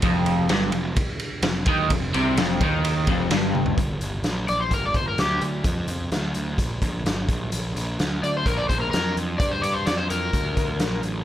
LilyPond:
<<
  \new Staff \with { instrumentName = "Electric slide guitar" } { \time 4/4 \key g \minor \tempo 4 = 128 r1 | r1 | r4. d''16 c''16 bes'16 d''16 c''16 bes'16 g'8 r8 | r1 |
r4. d''16 c''16 bes'16 d''16 c''16 bes'16 bes'8 r8 | d''16 c''16 d''16 c''16 d''16 c''16 bes'2 r8 | }
  \new Staff \with { instrumentName = "Overdriven electric guitar" } { \clef bass \time 4/4 \key g \minor f,4 g,8 f,8 r4 f,8 ees8 | f,8 c8 f,8 ees4 f,8 g,4 | r1 | r1 |
r1 | r1 | }
  \new Staff \with { instrumentName = "Picked electric bass" } { \clef bass \time 4/4 \key g \minor f,,4 g,,8 f,,8 r4 f,,8 ees,8 | f,,8 c,8 f,,8 ees,4 f,,8 g,,4 | g,,8 g,,8 bes,,8 bes,,8 g,,8 g,,8 d,8 d,8 | f,8 f,8 d,8 d,8 bes,,8 bes,,8 g,,8 bes,,8 |
bes,,8 bes,,8 d,8 d,8 bes,,8 bes,,8 f,8 f,8 | g,8 g,8 f,8 f,8 d,8 d,8 bes,,8 a,,8 | }
  \new DrumStaff \with { instrumentName = "Drums" } \drummode { \time 4/4 <bd cymr>8 cymr8 <cymr sn>8 cymr8 <bd cymr>8 cymr8 <cymr sn>8 <bd cymr>8 | <bd cymr>8 cymr8 <cymr sn>8 <bd cymr>8 cymr8 <bd cymr>8 <cymr sn>8 tommh16 tomfh16 | <hh bd>8 hh8 <hh sn>8 hh8 <hh bd>8 <hh bd>8 <hh sn>8 hh8 | <hh bd>8 hh8 <hh sn>8 hh8 <hh bd>8 <hh bd>8 <hh sn>8 <hh bd>8 |
hh8 hh8 <hh sn>8 hh8 <hh bd>8 <hh bd>8 <hh sn>8 hh8 | <hh bd>8 hh8 <hh sn>8 hh8 <hh bd>8 <hh bd>8 <hh sn>8 hh8 | }
>>